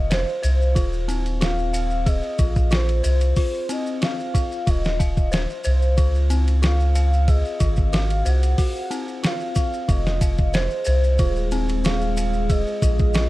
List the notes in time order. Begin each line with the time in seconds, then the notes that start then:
Already playing: F1 F4 D#5 F5
0.10 C5, snare, ride, maracas
0.29 maracas
0.43 C2 C5, ride, maracas
0.62 maracas
0.75 D#1 F4, kick, ride, maracas
0.93 maracas
1.08 C4, ride, maracas
1.26 ride, maracas
1.41 F4 F5, snare, ride, maracas
1.59 maracas
1.73 F5, ride, maracas
1.91 maracas
2.06 G#4 D#5, kick, ride, maracas
2.23 maracas
2.39 A#1 F4, kick, ride, maracas
2.56 kick, maracas
2.71 F4 C5, snare, ride, maracas
2.89 ride, maracas
3.04 C2 C5, ride, maracas
3.20 ride, maracas
3.36 F4 C5, kick, open hi-hat, maracas
3.54 maracas
3.69 C4 D#5, ride, maracas
3.86 maracas
4.01 F4 F5, snare, ride, maracas
4.20 maracas
4.34 F4, kick, ride, maracas
4.52 maracas
4.67 D#1 F4 D#5, kick, ride, maracas
4.84 snare, maracas
4.99 F5, kick, ride, maracas
5.17 kick, maracas
5.32 C5, snare, ride, maracas
5.50 maracas
5.64 C2 C5, ride, maracas
5.82 maracas
5.97 C#2 F4, kick, ride, maracas
6.15 maracas
6.30 C4, ride, maracas
6.48 ride, maracas
6.62 F4 F5, snare, ride, maracas
6.80 maracas
6.95 F5, ride, maracas
7.13 maracas
7.28 G#4 D#5, kick, ride, maracas
7.45 maracas
7.60 G#1 F4, kick, ride, maracas
7.76 kick, maracas
7.93 F#4 F5, snare, ride, maracas
8.10 ride, maracas
8.25 C2 C5 F#5, ride, maracas
8.43 ride, maracas
8.58 F#4, kick, open hi-hat, maracas
8.76 maracas
8.91 C4, ride, maracas
9.08 maracas
9.23 F4 F5, snare, ride, maracas
9.40 maracas
9.55 F4, kick, ride, maracas
9.73 maracas
9.88 F1 F4 G#4 D#5, kick, ride, maracas
10.06 snare, maracas
10.21 F5, kick, ride, maracas
10.38 kick, maracas
10.54 C5, snare, ride, maracas
10.70 maracas
10.85 C2 C5, ride, maracas
11.04 maracas
11.18 D#1 F4, kick, ride, maracas
11.36 maracas
11.51 C4, ride, maracas
11.69 ride, maracas
11.84 F4 F5, snare, ride, maracas
12.01 maracas
12.17 F5, ride, maracas
12.34 maracas
12.49 G#4 D#5, kick, ride, maracas
12.67 maracas
12.82 A#1 F4 D#5, kick, ride, maracas
12.99 kick, maracas
13.14 F4, snare, ride, maracas